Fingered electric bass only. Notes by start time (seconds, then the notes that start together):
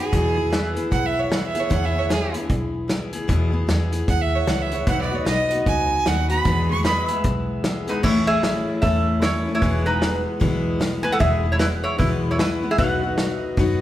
0.13 E2
0.92 B1
1.71 E2
2.50 B1
3.29 E2
3.68 E2
4.08 D#2
4.47 C#2
4.87 B1
5.26 B1
5.66 C#2
6.06 D#2
6.45 E2
7.24 B1
8.04 A1
8.83 E2
9.62 E1
10.41 B1
11.20 E1
12.00 B1
12.79 B1
13.57 F#2